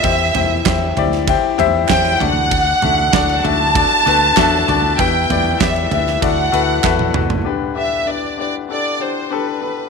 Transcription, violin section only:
X:1
M:4/4
L:1/8
Q:1/4=97
K:G
V:1 name="Violin section"
e3 z3 g f- | f3 a4- a | g2 e2 f3 z | z e d d d c B2 |]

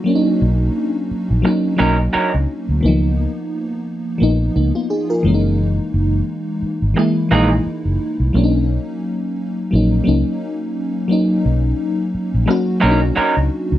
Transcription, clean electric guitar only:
X:1
M:4/4
L:1/16
Q:"Swing 16ths" 1/4=87
K:B
V:1 name="Clean electric guitar"
z8 z2 [F,CDA] z [F,CDA] z3 | z16 | z8 z2 [E,A,DG] z4 z | z16 |
z8 z2 [F,CDA] z [F,CDA] z3 |]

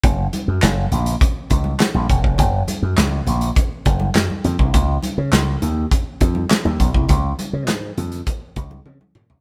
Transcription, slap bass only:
X:1
M:4/4
L:1/16
Q:1/4=102
K:Gblyd
V:1 name="Slap bass" clef=bass
G,,,2 z G,, G,,,2 B,,,2 z2 D,,2 z B,,, _F,,, =F,,, | G,,,2 z G,, D,,2 B,,,2 z2 G,,,2 G,, z F,, C,, | D,,2 z D, D,,2 E,,2 z2 F,,2 z E,, _C,, =C,, | D,,2 z D, A,,2 F,,2 z2 D,,2 D, z B,, C,, |]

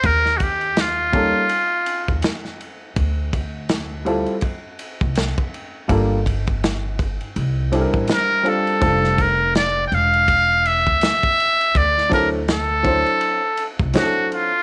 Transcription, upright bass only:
X:1
M:4/4
L:1/16
Q:"Swing 16ths" 1/4=82
K:Dm
V:1 name="Upright bass" clef=bass
_E,,6- E,, z4 E,, z4 | D,,6- D,, z4 C,,2 z3 | G,,,6- G,,, z C,,3 A,,, z4 | F,,,6 E,,,4- E,,, D,,2 z3 |
D,,6- D,, z4 C,, z4 |]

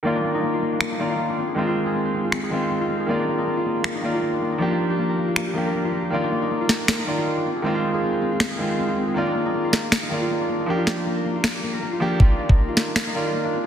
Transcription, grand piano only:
X:1
M:4/4
L:1/8
Q:"Swing 16ths" 1/4=158
K:Bbmix
V:1 name="Grand piano"
[E,B,Fd]4- [E,B,Fd] [E,B,Fd]2 z | [E,A,CF]4- [E,A,CF] [E,A,CF]3 | [E,B,Fd]4- [E,B,Fd] [E,B,Fd]3 | [F,B,DG]4- [F,B,DG] [F,B,DG]3 |
[E,B,Fd]4- [E,B,Fd] [E,B,Fd]2 z | [E,A,CF]4- [E,A,CF] [E,A,CF]3 | [E,B,Fd]4- [E,B,Fd] [E,B,Fd]3 | [F,B,DG]4- [F,B,DG] z2 [F,B,DG] |
[E,B,Fd]4- [E,B,Fd] [E,B,Fd]2 z |]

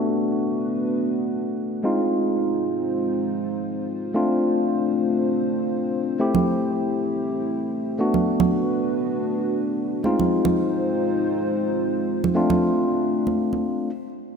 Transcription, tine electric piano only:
X:1
M:4/4
L:1/8
Q:"Swing 16ths" 1/4=117
K:Flyd
V:1 name="Tine electric piano"
[A,B,D^F]6- [A,B,DF] [_A,C_E=F]- | [_A,C_EF]8 | [A,CDF]8 | [A,CEG]6- [A,CEG] [A,B,D^F]- |
[A,B,D^F]6- [A,B,DF] [_A,C_E=F]- | [_A,C_EF]8 | [A,CDF]6 z2 |]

